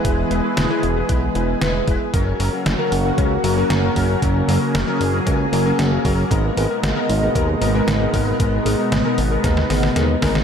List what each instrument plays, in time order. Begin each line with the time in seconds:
Already playing: analog synth pad E3 G#3 B3 G#4
0.05 analog synth bass E1, electric grand piano G#3 E4 B4, kick, closed hi-hat
0.31 analog synth bass E1, electric grand piano G#3 E4 B4, closed hi-hat
0.44 electric grand piano G#3 E4 B4
0.57 analog synth bass E1, snare, closed hi-hat
0.70 electric grand piano G#3 E4 B4
0.83 analog synth bass E1, closed hi-hat
0.96 electric grand piano G#3 E4 B4
1.09 analog synth bass B1, electric grand piano G#3 E4 B4, kick, closed hi-hat
1.35 analog synth bass E1, electric grand piano G#3 E4 B4, closed hi-hat
1.61 analog synth bass E1, electric grand piano G#3 E4 B4, snare, closed hi-hat
1.87 analog synth bass E1, electric grand piano G#3 E4 B4, kick, closed hi-hat
2.13 analog synth bass F#1, analog synth pad C#3 F#3 A#3 F#4, electric grand piano F#3 C#4 A#4, kick, closed hi-hat
2.39 analog synth bass F#1, electric grand piano F#3 C#4 A#4, open hi-hat
2.53 electric grand piano F#3 C#4 A#4
2.66 analog synth bass F#1, snare, closed hi-hat
2.79 electric grand piano F#3 C#4 A#4
2.92 analog synth bass F#1, open hi-hat
3.05 electric grand piano F#3 C#4 A#4
3.18 analog synth bass C#2, electric grand piano F#3 C#4 A#4, kick, closed hi-hat
3.44 analog synth bass F#1, electric grand piano F#3 C#4 A#4, open hi-hat
3.57 electric grand piano F#3 C#4 A#4
3.70 analog synth bass F#1, snare, closed hi-hat
3.83 electric grand piano F#3 C#4 A#4
3.96 analog synth bass F#1, electric grand piano F#3 C#4 A#4, kick, open hi-hat
4.22 analog synth bass F#1, electric grand piano F#3 C#4 A#4, analog synth pad G#4, kick, closed hi-hat
4.48 analog synth bass F#1, electric grand piano F#3 C#4 A#4, open hi-hat
4.61 electric grand piano F#3 C#4 A#4
4.74 analog synth bass F#1, snare, closed hi-hat
4.87 electric grand piano F#3 C#4 A#4
5.00 analog synth bass F#1, open hi-hat
5.13 electric grand piano F#3 C#4 A#4
5.26 analog synth bass C#2, electric grand piano F#3 C#4 A#4, kick, closed hi-hat
5.53 analog synth bass F#1, electric grand piano F#3 C#4 A#4, open hi-hat
5.66 electric grand piano F#3 C#4 A#4
5.79 analog synth bass F#1, snare, closed hi-hat
5.92 electric grand piano F#3 C#4 A#4
6.05 analog synth bass F#1, electric grand piano F#3 C#4 A#4, kick, open hi-hat
6.31 analog synth bass G#1, analog synth pad B2 G#3 D#4, electric grand piano G#3 B3 A#4, kick, closed hi-hat
6.57 analog synth bass G#1, electric grand piano G#3 B3 A#4, open hi-hat
6.70 electric grand piano G#3 B3 A#4
6.83 analog synth bass G#1, snare, closed hi-hat
6.96 electric grand piano G#3 B3 A#4
7.09 analog synth bass G#1, open hi-hat
7.22 electric grand piano G#3 B3 A#4
7.35 analog synth bass D#2, electric grand piano G#3 B3 A#4, kick, closed hi-hat
7.61 analog synth bass G#1, electric grand piano G#3 B3 A#4, open hi-hat
7.75 electric grand piano G#3 B3 A#4
7.87 analog synth bass G#1, snare, closed hi-hat
8.01 electric grand piano G#3 B3 A#4
8.14 analog synth bass G#1, electric grand piano G#3 B3 A#4, kick, open hi-hat
8.40 analog synth bass G#1, electric grand piano G#3 B3 A#4, analog synth pad B3, kick, closed hi-hat
8.66 analog synth bass G#1, electric grand piano G#3 B3 A#4, open hi-hat
8.79 electric grand piano G#3 B3 A#4
8.92 analog synth bass G#1, snare, closed hi-hat
9.05 electric grand piano G#3 B3 A#4
9.18 analog synth bass G#1, open hi-hat
9.31 electric grand piano G#3 B3 A#4
9.44 analog synth bass D#2, electric grand piano G#3 B3 A#4, kick, snare, closed hi-hat
9.57 snare
9.70 analog synth bass G#1, electric grand piano G#3 B3 A#4, snare, open hi-hat
9.83 snare
9.96 analog synth bass D#2, electric grand piano G#3 B3 A#4, snare, closed hi-hat
10.22 analog synth bass G#1, electric grand piano G#3 B3 A#4, kick, snare, open hi-hat
10.35 snare